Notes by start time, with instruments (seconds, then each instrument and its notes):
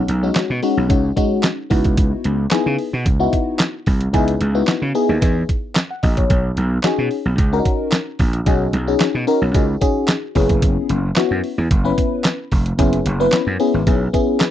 0.08 slap bass B1, closed hi-hat
0.23 fm electric piano G#3 C#4 D#4 F#4
0.35 muted slap bass stroke, snare, clap, closed hi-hat
0.50 slap bass B2
0.63 fm electric piano G#3 C#4 D#4 F#4, open hi-hat
0.77 slap bass B1
0.89 slap bass C#2, fm electric piano G#3 C#4 D#4 F#4, kick, closed hi-hat
1.16 fm electric piano G#3 C#4 D#4 F#4, kick, closed hi-hat
1.43 snare, clap, closed hi-hat
1.70 slap bass C#2, fm electric piano B3 D#4 E4 F#4, kick, open hi-hat
1.84 kick, closed hi-hat
1.97 kick, closed hi-hat
2.24 slap bass C#2, closed hi-hat
2.51 fm electric piano B3 D#4 E4 G#4, muted slap bass stroke, snare, clap, closed hi-hat
2.66 slap bass C#3
2.78 open hi-hat
2.93 slap bass B2
3.06 slap bass C#2, kick, closed hi-hat
3.20 fm electric piano B3 D#4 E4 F#4
3.33 kick, closed hi-hat
3.59 snare, clap, closed hi-hat
3.86 slap bass C2, kick, open hi-hat
4.01 closed hi-hat
4.13 slap bass C#2, fm electric piano B3 D#4 E4 G#4, kick, closed hi-hat
4.28 closed hi-hat
4.41 slap bass C#2, closed hi-hat
4.55 fm electric piano B3 D#4 E4 F#4
4.67 muted slap bass stroke, snare, clap, closed hi-hat
4.82 slap bass C#3
4.95 fm electric piano B3 D#4 E4 G#4, open hi-hat
5.09 slap bass D#2
5.21 slap bass E2, fm electric piano B3 D#4 E4 G#4, kick, closed hi-hat
5.49 kick, closed hi-hat
5.75 snare, clap, closed hi-hat
5.91 fm electric piano F#5
6.03 slap bass A#1, fm electric piano D#5, kick, open hi-hat
6.17 fm electric piano C#5, kick, closed hi-hat
6.30 slap bass B1, kick, closed hi-hat
6.57 slap bass B1, closed hi-hat
6.83 fm electric piano C#4 D#4 F#4 G#4, snare, clap, closed hi-hat
6.98 slap bass B2
7.11 open hi-hat
7.25 slap bass B1
7.38 slap bass C#2, kick, closed hi-hat
7.53 fm electric piano C#4 D4 F#4 A#4
7.59 fm electric piano D#4
7.65 kick, closed hi-hat
7.92 snare, clap, closed hi-hat
8.19 slap bass A#1, kick, open hi-hat
8.33 closed hi-hat
8.46 slap bass B1, fm electric piano C#4 D#4 F#4 G#4, kick, closed hi-hat
8.73 slap bass B1, closed hi-hat
8.87 fm electric piano C#4 D#4 F#4 G#4
9.00 snare, clap, closed hi-hat
9.15 slap bass B2
9.27 fm electric piano C#4 D#4 F#4 A#4, open hi-hat
9.42 slap bass B1
9.54 slap bass C#2, fm electric piano C#4 D#4 F#4 G#4, kick, closed hi-hat
9.81 fm electric piano C#4 D#4 F#4 G#4, kick, closed hi-hat
10.08 snare, clap, closed hi-hat
10.35 slap bass F#1, fm electric piano B3 C#4 E4 G#4, kick, open hi-hat
10.49 kick, closed hi-hat
10.62 kick, closed hi-hat
10.89 slap bass F#1, closed hi-hat
11.16 fm electric piano B3 C#4 E4 F#4, snare, clap, closed hi-hat
11.31 slap bass F#2
11.44 open hi-hat
11.58 slap bass E2
11.71 slap bass F#1, kick, closed hi-hat
11.84 fm electric piano B3 C#4 E4 B4
11.98 kick, closed hi-hat
12.24 snare, clap, closed hi-hat
12.52 slap bass F1, kick, open hi-hat
12.66 closed hi-hat
12.78 slap bass F#1, fm electric piano B3 C#4 E4 G#4, kick, closed hi-hat
12.93 closed hi-hat
13.06 slap bass F#1, closed hi-hat
13.20 fm electric piano B3 C#4 E4 B4
13.32 snare, clap, closed hi-hat
13.47 slap bass F#2
13.60 fm electric piano B3 C#4 E4 G#4, open hi-hat
13.74 slap bass G#1
13.87 slap bass B1, fm electric piano B3 C#4 E4 G#4, kick, closed hi-hat
14.13 fm electric piano B3 C#4 E4 G#4, kick, closed hi-hat
14.40 fm electric piano B4, snare, clap, closed hi-hat